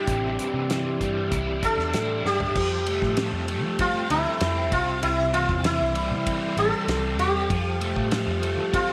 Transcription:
Already playing: overdriven electric guitar G3 D4 E4, sitar G4, tonewheel organ G4 D5 E5 C6
0.07 picked electric bass A1, overdriven electric guitar C3, kick, closed hi-hat
0.39 overdriven electric guitar E3, closed hi-hat
0.54 picked electric bass C3
0.70 overdriven electric guitar E3, snare, closed hi-hat
1.01 picked electric bass G2, overdriven electric guitar G3, kick, closed hi-hat
1.32 picked electric bass C2, overdriven electric guitar E4, kick, closed hi-hat
1.63 overdriven electric guitar D4, sitar A4, kick, closed hi-hat
1.78 picked electric bass E2, snare
1.93 picked electric bass A2, overdriven electric guitar E4, snare, closed hi-hat
2.24 picked electric bass G2, overdriven electric guitar D4, sitar G4, snare
2.40 floor tom
2.54 picked electric bass F2, overdriven electric guitar F3, tonewheel organ G3 C5 G5 A5, kick, crash
2.87 overdriven electric guitar A3, ride
3.02 picked electric bass A2, kick, snare
3.17 overdriven electric guitar F3, snare, ride
3.33 picked electric bass F2
3.47 overdriven electric guitar A3, ride
3.64 picked electric bass F3
3.79 overdriven electric guitar C4, sitar F4, kick, ride
4.10 picked electric bass D2, overdriven electric guitar A3, sitar E4, ride
4.40 picked electric bass F2, overdriven electric guitar C4, snare, ride
4.72 picked electric bass C2, overdriven electric guitar C3, sitar F4, tonewheel organ C5 E5 C6, kick, ride
5.03 picked electric bass C2, overdriven electric guitar C3, sitar E4, ride
5.33 overdriven electric guitar E3, sitar F4, ride
5.49 picked electric bass E2, kick
5.64 overdriven electric guitar E3, sitar E4, snare, ride
5.80 picked electric bass C2
5.94 overdriven electric guitar G3, ride
6.11 picked electric bass C3
6.26 overdriven electric guitar C4, kick, ride
6.57 picked electric bass A1, overdriven electric guitar G3, sitar A4, ride
6.88 picked electric bass C2, overdriven electric guitar C4, snare, ride
7.19 picked electric bass E2, overdriven electric guitar G4, sitar G4, ride
7.49 picked electric bass F2, overdriven electric guitar F3, tonewheel organ F5 A5, kick, ride
7.80 overdriven electric guitar A3, ride
7.96 picked electric bass A2, kick
8.11 overdriven electric guitar F3, snare, ride
8.27 picked electric bass F2
8.42 overdriven electric guitar A3, ride
8.57 picked electric bass F3
8.73 overdriven electric guitar C4, sitar F4, kick, ride

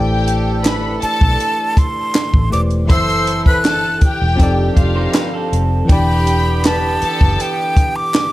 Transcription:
Already playing: fingered electric bass A1, horn section E3 D4 A4, tine electric piano A3 E4 G4 A4 C5 D5, string section G4 G5
0.28 closed hi-hat
0.64 string section B4 B5, snare, clap, closed hi-hat
1.01 string section A4 A5, flute A5, muted fingered electric bass stroke, closed hi-hat
1.21 fingered electric bass B1, kick
1.40 closed hi-hat
1.77 flute C6, kick, closed hi-hat
2.15 snare, clap, closed hi-hat
2.34 fingered electric bass A1, kick
2.50 fingered electric bass E1, tine electric piano A3 E4 G4 B4 C5 D5, flute D6, closed hi-hat
2.70 closed hi-hat
2.85 tine electric piano E3 E4 A4, string section C5 C6
2.89 fingered electric bass F#1, horn section E3 C4 A4, tine electric piano C5 E5, flute E6, kick, closed hi-hat
3.10 closed hi-hat
3.27 closed hi-hat
3.46 string section B4 B5, flute F#6, kick
3.65 string section A4 A5, snare, clap, closed hi-hat
4.01 string section G4 G5, muted fingered electric bass stroke, kick, closed hi-hat
4.22 fingered electric bass E1
4.36 horn section D#3 D4 G4, tine electric piano F3 C4 D#4, kick
4.40 fingered electric bass F1, tine electric piano G4 A4 D5, closed hi-hat
4.77 fingered electric bass F1, string section F4 F5, kick, closed hi-hat
4.96 clean electric guitar D#4 C5
5.14 clean electric guitar D#4 B4, snare, clap, closed hi-hat
5.34 clean electric guitar C4 A4
5.53 fingered electric bass F1, closed hi-hat
5.85 tine electric piano E3 E4
5.89 fingered electric bass E1, horn section D3 B3 G4, tine electric piano D4 G4 D5, string section G4 G5, flute B5, kick, closed hi-hat
6.27 closed hi-hat
6.64 string section B4 B5, flute A5, snare, clap, closed hi-hat
7.02 string section A4 A5, muted fingered electric bass stroke, closed hi-hat
7.21 fingered electric bass F#1, kick
7.40 flute G5, closed hi-hat
7.77 kick, closed hi-hat
7.96 flute D6
8.14 snare, clap, closed hi-hat

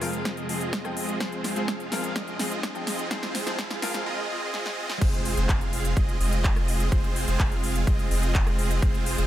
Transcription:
Already playing: analog synth pad F2 C3 G#3 F4, supersaw synth G#3 C4 F4 G#4 F5, riser
0.01 grand piano F3 G#3 C4 A#4, cross-stick, open hi-hat
0.13 closed hi-hat
0.25 supersaw synth G#3 C4 F4 G#4 D#5, kick, snare, closed hi-hat
0.37 closed hi-hat
0.48 grand piano F3 G#3 C4 G#4, supersaw synth G#3 C4 F4 G#4 D#5, open hi-hat
0.61 closed hi-hat
0.73 kick, snare, closed hi-hat
0.84 grand piano F3 G#3 C4 G5, cross-stick, closed hi-hat
0.97 open hi-hat
1.09 closed hi-hat
1.20 grand piano F3 G#3 C4 G#4, supersaw synth G#3 C4 F4 G#4 C5, kick, snare, closed hi-hat
1.32 closed hi-hat
1.44 snare, open hi-hat
1.56 grand piano F3 G#3 C4 G#4, supersaw synth G#3 C4 F4 G#4 C5, closed hi-hat
1.68 supersaw synth G#3 C4 G#4, kick, snare, closed hi-hat
1.80 closed hi-hat
1.91 grand piano F3 G#3 C4 A#4, snare, open hi-hat
2.04 closed hi-hat
2.16 supersaw synth G#3 C4 F4 G#4 D#5, kick, snare, closed hi-hat
2.28 closed hi-hat
2.39 grand piano F3 G#3 C4 G#4, supersaw synth G#3 C4 F4 G#4 D#5, snare, open hi-hat
2.51 closed hi-hat
2.63 kick, snare, closed hi-hat
2.75 grand piano F3 G#3 C4 G5, closed hi-hat
2.87 snare, open hi-hat
2.99 closed hi-hat
3.10 grand piano F3 G#3 C4 G#4, supersaw synth G#3 C4 F4 G#4 C5, kick, snare, closed hi-hat
3.23 snare, closed hi-hat
3.35 snare, open hi-hat
3.46 grand piano F3 G#3 C4 G#4, supersaw synth G#3 C4 F4 G#4 C5, snare, closed hi-hat
3.58 supersaw synth G#3 C4 F4 G#4 F5, kick, snare, closed hi-hat
3.71 snare, closed hi-hat
3.82 grand piano F3 G#3 C4 A#4, snare, open hi-hat
3.94 snare, closed hi-hat
4.06 supersaw synth G#3 C4 F4 G#4 D#5
4.30 supersaw synth G#3 C4 F4 G#4 D#5
4.54 snare
4.66 snare
4.90 snare
5.01 sub bass F1, supersaw synth G#3 C4 F4 G#4 C5, analog synth pad G#3 C4 F4, kick, closed hi-hat, crash, impact
5.13 closed hi-hat
5.25 open hi-hat
5.37 sub bass F1, supersaw synth G#3 C4 F4 G#4 C5, closed hi-hat
5.49 sub bass F1, supersaw synth G#3 G#4, kick, clap, closed hi-hat
5.61 closed hi-hat
5.73 open hi-hat
5.85 closed hi-hat
5.97 sub bass F1, supersaw synth G#3 C4 F4 G#4 D#5, kick, closed hi-hat
6.09 closed hi-hat
6.20 sub bass F1, supersaw synth G#3 C4 F4 G#4 D#5, open hi-hat
6.33 closed hi-hat
6.44 kick, clap, closed hi-hat
6.56 cross-stick, closed hi-hat
6.68 open hi-hat
6.80 closed hi-hat
6.92 sub bass F1, supersaw synth G#3 C4 F4 G#4 C5, kick, closed hi-hat
7.04 closed hi-hat
7.16 open hi-hat
7.28 sub bass F1, supersaw synth G#3 C4 F4 G#4 C5, closed hi-hat
7.39 sub bass F1, supersaw synth G#3 C4 F4 G#4 F5, kick, clap, closed hi-hat
7.52 closed hi-hat
7.64 open hi-hat
7.75 closed hi-hat
7.87 sub bass F1, supersaw synth G#3 C4 F4 G#4 D#5, kick, closed hi-hat
7.99 closed hi-hat
8.11 sub bass F1, supersaw synth G#3 C4 F4 G#4 D#5, open hi-hat
8.23 closed hi-hat
8.35 kick, clap, closed hi-hat
8.47 cross-stick, closed hi-hat
8.59 open hi-hat
8.71 closed hi-hat
8.82 sub bass F1, supersaw synth G#3 C4 F4 G#4 C5, kick, closed hi-hat
8.94 closed hi-hat
9.06 open hi-hat
9.18 sub bass F1, supersaw synth G#3 C4 F4 G#4 C5, closed hi-hat

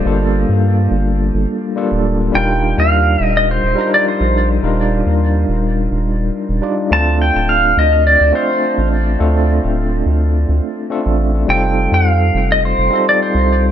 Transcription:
Already playing: tine electric piano G3 A#3 D4 F4 A4
0.05 analog synth bass G1, tine electric piano G3 A#3 D4 F4 A4
0.49 analog synth bass G2
0.91 analog synth bass G1
1.34 analog synth bass G1
1.76 tine electric piano G3 A#3 D4 F4 A4
1.92 analog synth bass D1
2.32 analog synth bass D#1, tine electric piano G3 D4 D#4 F4 A#4, pedal steel guitar G5
2.78 analog synth bass D#2, pedal steel guitar F5
3.20 analog synth bass D#1
3.25 pedal steel guitar D#5
3.37 pedal steel guitar D#5
3.51 pedal steel guitar C5
3.64 analog synth bass D#1
3.75 tine electric piano G3 D4 D#4 F4 A#4
3.94 pedal steel guitar D5
4.08 pedal steel guitar C5
4.21 analog synth bass A#1
4.62 analog synth bass D#1, tine electric piano G3 D4 D#4 F4 A#4
5.06 analog synth bass D#2
5.49 analog synth bass D#1
5.91 analog synth bass D#1
6.49 analog synth bass D#1
6.62 tine electric piano G3 D4 D#4 F4 D5
6.90 analog synth bass D2, tine electric piano A3 C4 D4 F4 A4, pedal steel guitar A5
7.22 pedal steel guitar G5
7.35 analog synth bass D1
7.49 pedal steel guitar F5
7.77 analog synth bass D2, pedal steel guitar D#5
8.07 pedal steel guitar D5
8.21 analog synth bass D2
8.32 tine electric piano A3 C4 D4 F4 A4, pedal steel guitar C5
8.78 analog synth bass A1
9.18 analog synth bass D2, tine electric piano A3 C4 D4 F4 A4
9.64 analog synth bass D1
10.06 analog synth bass D2
10.49 analog synth bass D2
10.90 tine electric piano A3 C4 D4 F4 A4
11.06 analog synth bass A1
11.47 analog synth bass F1, tine electric piano G3 C4 D#4 F4 A4, pedal steel guitar G5
11.92 analog synth bass F2, pedal steel guitar F5
12.34 analog synth bass F1
12.52 pedal steel guitar D#5
12.65 pedal steel guitar C5
12.78 analog synth bass F1
12.90 tine electric piano G3 C4 D#4 F4 A4
13.09 pedal steel guitar D5
13.23 pedal steel guitar C5
13.35 analog synth bass C2

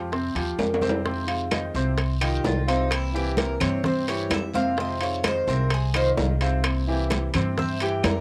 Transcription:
Already playing: upright bass F2, nylon-string guitar F3 G#3 C4 G4
0.11 grand piano C3 C4 C5, muted nylon-string guitar stroke, high bongo, high conga, long guiro
0.35 upright bass D#2, grand piano F3 F4 G4, high conga, high timbale
0.58 upright bass F2, nylon-string guitar F3 G#3 C4 G4, high bongo, low bongo, high conga, high timbale, short guiro, claves
0.74 high timbale
0.81 grand piano C3 C4 C5, nylon-string guitar F3 G#3 C4 G4, high bongo, high conga, short guiro
0.89 low timbale
1.04 nylon-string guitar C3 D#3 G#3 C4 F4, grand piano C3 C4 C5, high bongo, high conga, long guiro
1.27 nylon-string guitar D#3 G#3 C4 F4, high conga, high timbale
1.51 nylon-string guitar D#3 G#3 C4 F4, grand piano D#3 D#4 F4, high bongo, high conga, high timbale, low timbale, short guiro, claves
1.74 upright bass C2, grand piano C3 C4 C5, high bongo, high conga, short guiro
1.98 muted nylon-string guitar stroke, high bongo, high conga, high timbale, long guiro
2.21 grand piano D#3 D#4 F4, cuban tres G4, high bongo, high conga, high timbale, claves
2.44 upright bass C2, nylon-string guitar D#3 G#3 C4 F4, cuban tres F4, high bongo, low bongo, high conga, low timbale, short guiro
2.67 grand piano C3 C4 C5, nylon-string guitar D#3 G#3 C4 F4, cuban tres D#4, high bongo, high conga, high timbale, short guiro
2.90 nylon-string guitar C3 E3 A#3 C4 E4, cuban tres E4, high bongo, high conga, high timbale, long guiro, claves
3.14 grand piano E3 E4 G4, nylon-string guitar E3 A#3 C4 E4, cuban tres G4, high conga
3.37 nylon-string guitar E3 A#3 C4 E4, cuban tres A#4, high bongo, high conga, high timbale, low timbale, short guiro
3.60 upright bass G2, grand piano C3 C4 C5, cuban tres C#5, high bongo, high conga, low conga, high timbale, short guiro, claves
3.84 grand piano C3 C4 C5, cuban tres C5, high bongo, high conga, low conga, long guiro
4.07 grand piano E3 E4 G4, cuban tres C#5, high bongo, high conga, high timbale
4.30 upright bass F2, nylon-string guitar E3 A#3 C4 E4, cuban tres E5, high bongo, low bongo, high conga, high timbale, low timbale, short guiro, claves
4.54 grand piano C3 C4 C5, nylon-string guitar E3 A#3 C4 E4, cuban tres F5, high bongo, high conga, short guiro
4.77 nylon-string guitar C3 D#3 G#3 C4 F4, grand piano C3 C4 C5, cuban tres D#5, high bongo, high conga, long guiro
5.01 nylon-string guitar D#3 G#3 C4 F4, cuban tres C#5, high conga, high timbale
5.24 nylon-string guitar D#3 G#3 C4 F4, grand piano D#3 D#4 F4, cuban tres C5, high bongo, high conga, high timbale, low timbale, short guiro, claves
5.47 upright bass C2, grand piano C3 C4 C5, cuban tres A#4, high bongo, high conga, short guiro
5.70 cuban tres G#4, muted nylon-string guitar stroke, high bongo, high conga, high timbale, long guiro
5.94 grand piano D#3 D#4 F4, cuban tres C5, high bongo, high conga, high timbale, claves
6.17 upright bass C2, nylon-string guitar D#3 G#3 C4 F4, high bongo, low bongo, high conga, low timbale, short guiro
6.41 grand piano C3 C4 C5, nylon-string guitar D#3 G#3 C4 F4, high bongo, high conga, high timbale, short guiro
6.64 nylon-string guitar C3 E3 A#3 C4 E4, high bongo, high conga, high timbale, long guiro, claves
6.87 grand piano E3 E4 G4, nylon-string guitar E3 A#3 C4 E4, high conga
7.10 nylon-string guitar A#3 C4 E4, high bongo, high conga, high timbale, low timbale, short guiro
7.34 upright bass G2, grand piano C3 C4 C5, high bongo, high conga, low conga, high timbale, short guiro, claves
7.57 grand piano C3 C4 C5, cuban tres E5, muted nylon-string guitar stroke, high bongo, high conga, low conga, long guiro
7.80 grand piano E3 E4 G4, cuban tres G4, high bongo, high conga, high timbale
8.02 upright bass F2, nylon-string guitar E3 A#3 C4 E4, cuban tres A#4, high bongo, low bongo, high conga, high timbale, low timbale, short guiro, claves

